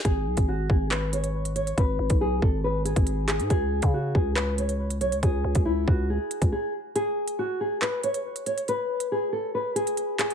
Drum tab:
HH |x--x------xx-xxx|x--x------xxx-xx|x--x------xx-xxx|x--x------xx----|
CP |--------x-------|--------------x-|--------x-------|----------------|
BD |o--o--o---------|o--o--o----o----|o--o--o---------|o--o--o----o----|

HH |x--x------xx-xxx|x--x------xxx-xx|
CP |--------x-------|--------------x-|
BD |----------------|----------------|